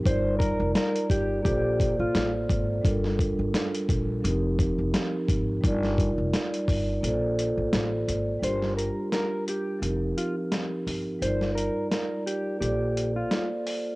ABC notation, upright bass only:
X:1
M:4/4
L:1/16
Q:"Swing 16ths" 1/4=86
K:Gm
V:1 name="Upright bass" clef=bass
G,,,3 F,,, z2 G,,,2 B,,,3 A,,, A,,,2 _A,,,2 | G,,,3 G,,, z2 B,,,2 F,,,3 F,,, z2 _A,,,2 | G,,,3 F,,, z2 G,,,2 B,,,3 A,,, A,,,2 _A,,,2 | G,,,3 z4 z F,,,2 z4 G,,, z |
G,,,3 z4 z B,,,4 z4 |]